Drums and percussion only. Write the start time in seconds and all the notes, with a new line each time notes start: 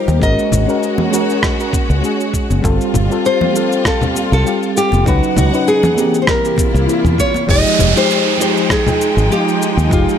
0.08 high conga, cabasa
0.22 kick, cabasa
0.39 cabasa
0.52 low conga, cabasa
0.69 cabasa
0.83 cabasa
0.98 high conga, low conga
1.13 cabasa
1.30 cabasa
1.43 kick, cross-stick, cabasa
1.60 cabasa
1.73 kick, high conga, cabasa
1.90 cabasa
2.04 cabasa
2.20 cabasa
2.34 kick, cabasa
2.50 high conga, cabasa
2.64 kick, cabasa
2.81 cabasa
2.94 low conga, cabasa
3.12 cabasa
3.25 cabasa
3.41 high conga, low conga
3.56 cabasa
3.72 cabasa
3.85 kick, cross-stick, cabasa
4.01 low conga, cabasa
4.15 high conga, cabasa
4.33 cabasa
4.47 cabasa
4.63 cabasa
4.77 cabasa
4.92 high conga, cabasa
5.06 kick, cabasa
5.23 cabasa
5.37 low conga, cabasa
5.54 cabasa
5.68 cabasa
5.83 high conga, low conga, cabasa
5.98 cabasa
6.14 cabasa
6.27 kick, cross-stick, cabasa
6.45 cabasa
6.57 kick, high conga, cabasa
6.75 cabasa
6.89 cabasa
7.05 low conga, cabasa
7.18 kick, cabasa
7.34 high conga, cabasa
7.49 kick, cabasa
7.66 cabasa
7.79 low conga, cabasa
7.97 cabasa
8.11 cabasa
8.41 cabasa
8.57 cabasa
8.70 kick, cross-stick, cabasa
8.87 low conga, cabasa
9.01 cabasa
9.18 cabasa
9.32 cabasa
9.48 cabasa
9.62 cabasa
9.79 cabasa
9.91 kick, cabasa
10.09 cabasa